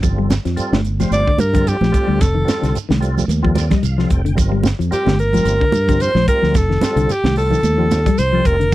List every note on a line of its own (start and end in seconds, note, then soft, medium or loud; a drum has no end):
0.02 0.37 G1 medium
0.02 0.34 G3 medium
0.02 0.35 C4 medium
0.02 0.35 F4 medium
0.02 0.35 A4 medium
0.02 kick medium
0.02 closed hi-hat medium
0.02 high conga soft
0.02 low conga medium
0.02 shekere medium
0.18 0.32 G3 medium
0.30 snare medium
0.30 closed hi-hat soft
0.30 high conga medium
0.30 shekere medium
0.45 0.55 F2 medium
0.45 0.59 F3 medium
0.45 snare soft
0.45 closed hi-hat soft
0.45 shekere soft
0.56 0.81 G3 medium
0.56 0.81 C4 medium
0.56 0.81 F4 medium
0.56 0.81 A4 loud
0.56 muted fingered electric bass stroke soft
0.56 closed hi-hat medium
0.56 high conga soft
0.56 shekere medium
0.72 1.04 G1 medium
0.72 0.87 D3 medium
0.72 snare medium
0.72 high conga medium
0.85 closed hi-hat soft
0.85 shekere soft
1.00 1.14 F3 medium
1.00 1.31 G3 medium
1.00 1.31 C4 medium
1.00 1.31 F4 medium
1.00 1.31 C5 medium
1.00 snare soft
1.00 closed hi-hat soft
1.00 high conga medium
1.00 low conga medium
1.00 shekere medium
1.11 1.24 G1 medium
1.11 1.42 D5 loud
1.11 closed hi-hat medium
1.11 high conga medium
1.11 shekere medium
1.27 1.41 D3 medium
1.27 kick medium
1.38 1.72 G2 medium
1.38 1.69 A#4 medium
1.38 closed hi-hat medium
1.38 high conga medium
1.38 shekere medium
1.53 1.68 D3 medium
1.53 1.77 G3 medium
1.53 1.77 C4 medium
1.53 1.77 F4 medium
1.53 1.77 A4 medium
1.53 kick medium
1.53 closed hi-hat medium
1.53 low conga medium
1.53 shekere soft
1.67 2.23 G4 medium
1.67 closed hi-hat medium
1.67 high conga soft
1.67 shekere medium
1.81 1.91 A#1 medium
1.81 1.96 F3 medium
1.81 snare soft
1.81 high conga medium
1.91 2.20 G3 medium
1.91 2.20 C4 medium
1.91 2.20 F4 medium
1.91 2.20 A4 medium
1.91 kick medium
1.91 closed hi-hat medium
1.91 shekere soft
2.07 2.19 D2 medium
2.07 2.22 G3 medium
2.21 2.43 F1 loud
2.21 2.75 A4 medium
2.21 kick loud
2.21 snare soft
2.21 closed hi-hat medium
2.21 high conga soft
2.21 low conga medium
2.21 shekere medium
2.35 2.49 D#3 medium
2.45 2.78 G3 medium
2.45 2.78 C4 medium
2.45 2.79 F4 medium
2.45 2.78 A4 medium
2.45 snare medium
2.45 closed hi-hat medium
2.45 high conga medium
2.49 shekere medium
2.62 2.73 C2 medium
2.62 2.76 D3 medium
2.62 snare soft
2.62 closed hi-hat soft
2.62 shekere soft
2.75 closed hi-hat medium
2.75 high conga soft
2.75 shekere medium
2.89 3.22 C2 medium
2.89 3.03 D#3 medium
2.89 snare medium
2.89 high conga medium
3.01 3.25 G3 loud
3.01 3.26 C4 medium
3.01 3.26 F4 medium
3.01 3.26 A4 loud
3.01 closed hi-hat medium
3.01 shekere soft
3.18 high conga medium
3.18 low conga medium
3.18 shekere medium
3.28 3.72 D#2 medium
3.28 closed hi-hat medium
3.28 high conga medium
3.28 shekere medium
3.43 3.58 F3 medium
3.43 3.75 G3 medium
3.43 3.75 C4 medium
3.43 3.75 F4 medium
3.43 3.75 A4 loud
3.43 kick medium
3.55 3.70 D5 medium
3.55 snare soft
3.55 closed hi-hat medium
3.55 high conga medium
3.55 shekere medium
3.70 3.85 G3 medium
3.70 3.83 D#5 medium
3.70 kick medium
3.70 snare soft
3.70 closed hi-hat medium
3.70 low conga medium
3.70 shekere soft
3.83 4.05 C2 medium
3.83 4.09 F5 medium
3.83 closed hi-hat medium
3.83 high conga soft
3.83 shekere medium
3.98 4.12 F3 medium
3.98 4.22 G3 medium
3.98 4.22 C4 medium
3.98 4.22 F4 medium
3.98 4.22 A4 loud
3.98 snare soft
4.09 4.38 F1 medium
4.09 4.35 G5 medium
4.09 kick medium
4.09 closed hi-hat medium
4.09 shekere soft
4.25 4.32 D3 medium
4.25 closed hi-hat soft
4.35 4.72 G1 medium
4.35 4.69 G3 medium
4.35 4.69 C4 medium
4.35 4.69 F4 medium
4.35 4.69 A#4 medium
4.35 kick medium
4.35 closed hi-hat medium
4.35 high conga soft
4.35 low conga medium
4.35 shekere medium
4.52 4.66 G3 medium
4.63 snare medium
4.63 closed hi-hat medium
4.63 high conga medium
4.63 shekere medium
4.79 4.90 F2 medium
4.79 4.93 F3 medium
4.79 closed hi-hat soft
4.79 shekere soft
4.91 5.16 G3 medium
4.91 5.16 C4 medium
4.91 5.16 F4 medium
4.91 5.18 G4 medium
4.91 5.16 A#4 medium
4.91 muted fingered electric bass stroke soft
4.91 closed hi-hat medium
4.91 high conga soft
4.91 shekere medium
5.06 5.38 G1 medium
5.06 5.20 D3 medium
5.06 snare medium
5.06 high conga medium
5.19 6.03 A#4 medium
5.19 closed hi-hat soft
5.19 shekere soft
5.33 5.48 F3 medium
5.33 5.65 G3 medium
5.33 5.65 C4 medium
5.33 5.65 F4 medium
5.33 5.65 A#4 medium
5.33 closed hi-hat medium
5.33 high conga medium
5.33 low conga medium
5.33 shekere medium
5.45 5.58 G1 loud
5.45 closed hi-hat medium
5.45 high conga medium
5.45 shekere medium
5.61 5.75 D3 medium
5.61 kick medium
5.72 6.07 G2 medium
5.72 closed hi-hat medium
5.72 high conga medium
5.72 shekere medium
5.88 6.03 D3 medium
5.88 6.12 G3 medium
5.88 6.12 C4 medium
5.88 6.13 F4 medium
5.88 6.12 A#4 medium
5.88 kick medium
5.88 closed hi-hat medium
5.88 low conga medium
5.88 shekere soft
5.99 6.28 C5 loud
5.99 closed hi-hat medium
5.99 high conga soft
5.99 shekere medium
6.15 6.25 A#1 medium
6.15 6.29 F3 medium
6.15 snare soft
6.15 high conga medium
6.28 6.56 G3 medium
6.28 6.56 C4 medium
6.28 6.56 F4 medium
6.28 6.58 A#4 loud
6.28 6.56 A#4 medium
6.28 kick medium
6.28 closed hi-hat medium
6.28 shekere soft
6.42 6.53 D2 medium
6.42 6.57 F3 medium
6.42 snare soft
6.54 6.77 F1 loud
6.54 7.13 A4 medium
6.54 kick medium
6.54 snare soft
6.54 closed hi-hat medium
6.54 high conga soft
6.54 low conga medium
6.54 shekere medium
6.70 6.84 D#3 medium
6.70 snare soft
6.81 7.14 G3 medium
6.81 7.14 C4 medium
6.81 7.14 F4 medium
6.81 7.14 A4 medium
6.81 snare medium
6.81 closed hi-hat medium
6.81 high conga medium
6.81 shekere medium
6.96 7.06 C2 medium
6.96 7.11 D3 medium
6.96 closed hi-hat medium
6.96 shekere soft
7.09 7.37 G4 medium
7.09 closed hi-hat medium
7.09 high conga soft
7.09 shekere medium
7.24 7.55 C2 medium
7.24 7.38 D#3 medium
7.24 snare medium
7.24 high conga medium
7.36 7.61 G3 medium
7.36 7.61 C4 medium
7.36 7.61 F4 medium
7.36 7.61 A4 medium
7.36 8.20 A4 medium
7.36 open hi-hat medium
7.36 shekere soft
7.50 7.65 D#3 medium
7.50 low conga medium
7.50 shekere medium
7.63 8.07 D#2 medium
7.63 closed hi-hat medium
7.63 high conga medium
7.63 shekere medium
7.78 7.92 F3 medium
7.78 8.10 G3 medium
7.78 8.10 C4 medium
7.78 8.10 F4 medium
7.78 8.10 A4 medium
7.91 snare soft
7.91 closed hi-hat medium
7.91 high conga medium
7.91 shekere medium
8.06 8.20 G3 medium
8.06 kick medium
8.06 closed hi-hat medium
8.06 low conga medium
8.06 shekere soft
8.18 8.40 C2 medium
8.18 8.48 C5 medium
8.18 closed hi-hat medium
8.18 high conga soft
8.18 shekere medium
8.33 8.47 F3 medium
8.33 8.57 G3 medium
8.33 8.56 C4 medium
8.33 8.57 F4 medium
8.33 8.57 A4 medium
8.45 8.72 F1 medium
8.45 8.75 A#4 medium
8.45 kick medium
8.45 closed hi-hat medium
8.45 shekere soft
8.60 8.66 D3 medium
8.60 closed hi-hat soft